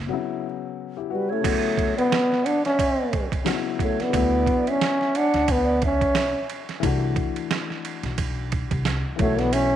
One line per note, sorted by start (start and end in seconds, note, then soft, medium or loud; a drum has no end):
0.06 0.15 C3 medium
0.06 1.41 F#3 medium
0.11 1.39 C#3 medium
0.11 1.42 B3 medium
0.11 0.44 E4 medium
0.97 1.10 E4 medium
0.97 1.10 G4 medium
1.10 1.33 G3 medium
1.10 1.29 F#4 medium
1.10 1.31 B4 medium
1.29 1.97 A3 medium
1.29 1.62 C#4 soft
1.29 1.45 E4 medium
1.29 1.96 C#5 medium
1.41 3.41 C#3 medium
1.41 3.42 F#3 medium
1.41 kick loud
1.45 3.43 B3 medium
1.45 3.44 E4 medium
1.45 crash medium
1.45 ride medium
1.78 kick medium
1.78 ride medium
1.96 2.47 B3 loud
1.96 2.45 D5 medium
1.96 ride soft
2.12 snare loud
2.12 hi-hat pedal soft
2.12 ride medium
2.32 snare soft
2.44 2.65 D4 loud
2.44 2.64 F#5 medium
2.44 ride medium
2.65 3.29 C#4 medium
2.65 3.28 E5 medium
2.65 snare soft
2.65 ride soft
2.79 kick medium
2.79 ride medium
3.13 kick medium
3.13 ride medium
3.32 kick medium
3.32 ride soft
3.44 4.13 C#3 medium
3.44 4.10 F#3 medium
3.44 4.12 B3 medium
3.44 3.54 D#4 medium
3.44 snare loud
3.44 hi-hat pedal soft
3.44 ride medium
3.55 4.15 E4 medium
3.79 4.04 A3 medium
3.79 4.02 C#5 medium
3.79 kick medium
3.79 ride soft
4.00 4.72 B3 medium
4.00 4.69 D5 medium
4.00 snare soft
4.00 ride soft
4.09 6.77 D3 medium
4.09 6.78 F#3 medium
4.13 4.44 D2 loud
4.13 6.79 B3 medium
4.13 6.81 E4 medium
4.13 kick loud
4.13 ride medium
4.46 kick medium
4.46 ride medium
4.67 5.19 C#4 loud
4.67 5.18 E5 medium
4.67 ride soft
4.81 snare loud
4.81 hi-hat pedal soft
4.81 ride medium
5.01 snare soft
5.15 5.53 D4 loud
5.15 5.52 F#5 medium
5.15 ride medium
5.34 6.02 D2 medium
5.34 snare soft
5.34 ride soft
5.48 5.84 B3 medium
5.48 5.83 D5 medium
5.48 kick medium
5.48 ride medium
5.82 6.47 C#4 medium
5.82 6.46 E5 medium
5.82 kick medium
5.82 ride medium
6.01 6.32 B1 medium
6.01 kick medium
6.01 ride soft
6.15 snare loud
6.15 hi-hat pedal soft
6.15 ride medium
6.50 ride medium
6.69 snare soft
6.69 ride soft
6.80 7.14 C2 loud
6.80 9.14 E3 medium
6.80 9.15 A3 medium
6.80 kick loud
6.80 ride medium
6.84 9.16 D4 medium
6.84 9.17 F#4 medium
7.16 kick loud
7.16 ride medium
7.36 ride soft
7.51 snare loud
7.51 hi-hat pedal soft
7.51 ride medium
7.70 snare soft
7.85 ride medium
8.03 8.67 B1 medium
8.03 snare soft
8.03 ride soft
8.18 kick medium
8.18 ride medium
8.52 kick medium
8.52 ride medium
8.71 9.02 C2 medium
8.71 kick medium
8.71 ride soft
8.85 snare loud
8.85 hi-hat pedal soft
8.85 ride medium
9.16 9.76 B1 loud
9.16 9.76 E3 medium
9.16 9.76 A3 medium
9.16 9.40 C#5 medium
9.16 kick loud
9.16 ride medium
9.20 9.41 A3 medium
9.20 9.27 C#4 soft
9.20 9.76 F#4 medium
9.27 9.76 D3 medium
9.39 9.54 B3 medium
9.39 9.53 D5 medium
9.39 snare soft
9.39 ride soft
9.52 9.76 C#4 loud
9.52 9.76 E5 medium
9.52 ride medium